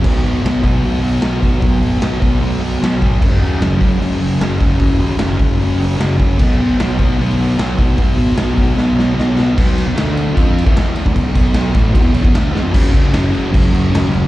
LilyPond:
<<
  \new Staff \with { instrumentName = "Distorted electric guitar" } { \clef bass \time 4/4 \key b \lydian \tempo 4 = 151 <b, fis b>8 <fis b>8 <b, fis b>8 <fis b>8 <b, fis b>8 <fis b>8 <b, fis b>8 <fis b>8 | <b, fis b>8 <fis b>8 <b, fis b>8 <fis b>8 <b, fis b>8 <fis b>8 <b, fis b>8 <fis b>8 | <fis, cis fis>8 <cis fis>8 <fis, cis fis>8 <cis fis>8 <fis, cis fis>8 <cis fis>8 <fis, cis fis>8 <cis fis>8 | <fis, cis fis>8 <cis fis>8 <fis, cis fis>8 <cis fis>8 <fis, cis fis>8 <cis fis>8 <fis, cis fis>8 <cis fis>8 |
<b, fis b>8 <fis b>8 <b, fis b>8 <fis b>8 <b, fis b>8 <fis b>8 <b, fis b>8 <fis b>8 | <b, fis b>8 <fis b>8 <b, fis b>8 <fis b>8 <b, fis b>8 <fis b>8 <b, fis b>8 <fis b>8 | <b, fis b>8. <b, fis>16 <d a d'>4 <f c' f'>8. <e b e'>4 <d a>16 | <b, fis>8 <b, fis b>4 <a, e a>8 <b, fis>16 <e b>16 <b, fis>16 <e b>16 <d a d'>8 <e b>16 <eis bis>16 |
<fis, cis fis>8 <fis, cis fis>8 <fis, cis fis>8 <fis, cis fis>8 <fis, cis fis>8 <fis, cis fis>8 <fis, cis fis>8 <fis, cis fis>8 | }
  \new Staff \with { instrumentName = "Picked electric bass" } { \clef bass \time 4/4 \key b \lydian b,,8 gis,,8 b,,8 b,,8 b,,4 b,,8 b,,8 | b,,8 gis,,8 b,,8 b,,8 b,,4 b,,8 gis,,8 | fis,,8 dis,8 fis,,8 fis,,8 fis,,4 fis,,8 fis,,8 | fis,,8 dis,8 fis,,8 fis,,8 fis,,4 fis,,8 fis,,8 |
b,,8 gis,,8 b,,8 b,,8 b,,4 b,,8 b,,8 | b,,8 gis,,8 b,,8 b,,8 b,,4 b,,8 b,,8 | b,,8. b,,16 d,4 f,8. e,4 d,16 | b,,8 b,,4 a,,8 b,,16 e,16 b,,16 e,16 d,8 e,16 eis,16 |
fis,,8 r8 fis,,8 fis,,8 fis,,8 fis,,8 dis,8 fis,,8 | }
  \new DrumStaff \with { instrumentName = "Drums" } \drummode { \time 4/4 <cymc bd>8 hho8 <hho sn>8 <hho bd>8 hho16 sn16 hho8 <hho sn>8 <hho bd>8 | <hho bd>8 hho8 <hho sn>8 <hho bd>8 hho8 hho8 <hho sn>8 <hho bd>8 | <cymc bd>8 hho8 <hho sn>8 <hho bd>8 hho8 hho8 <hho sn>8 <hho bd>8 | <hho bd>8 hho8 <hho sn>8 <hho bd>8 hho8 hho8 <hho sn>8 <hho bd>8 |
<cymc bd>8 hho8 <hho sn>8 <hho bd>8 hho16 sn16 hho8 <hho sn>8 <hho bd>8 | <hho bd>8 hho8 <hho sn>8 <hho bd>8 sn8 sn8 sn8 sn8 | <cymc bd>8 cymr8 <cymr sn>8 cymr8 <bd cymr>8 cymr16 bd16 <cymr sn>8 cymr16 bd16 | <bd cymr>8 <bd cymr>8 <cymr sn>8 <bd cymr>8 <bd cymr>8 cymr16 bd16 <cymr sn>8 sn8 |
<cymc bd>8 <cymc bd>8 <cymc sn>8 <cymc sn>8 <cymc bd>8 cymc8 <cymc sn>8 cymc8 | }
>>